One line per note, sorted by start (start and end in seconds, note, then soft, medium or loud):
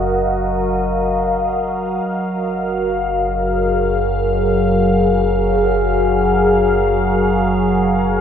0.00 2.00 F#1 medium
0.00 8.21 F#3 medium
0.00 8.21 F#4 medium
0.00 8.21 A#4 medium
0.00 3.61 D#5 medium
0.00 8.21 F5 medium
2.05 8.21 F#1 medium
3.16 8.21 G#4 medium